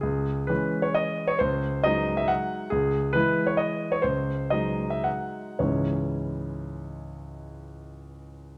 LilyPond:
<<
  \new Staff \with { instrumentName = "Grand piano" } { \time 3/4 \key cis \minor \tempo 4 = 128 gis'4 b'8. cis''16 dis''8. cis''16 | bis'4 dis''8. e''16 fis''4 | gis'4 b'8. cis''16 dis''8. cis''16 | bis'4 dis''8. e''16 fis''4 |
<cis, gis, e gis cis' e' cis''>2.~ | <cis, gis, e gis cis' e' cis''>2. | }
  \new Staff \with { instrumentName = "Grand piano" } { \clef bass \time 3/4 \key cis \minor cis,4 <e gis cis'>2 | cis,4 <fis gis dis'>2 | cis,4 <e gis e'>2 | cis,4 <fis gis dis'>2 |
r2. | r2. | }
>>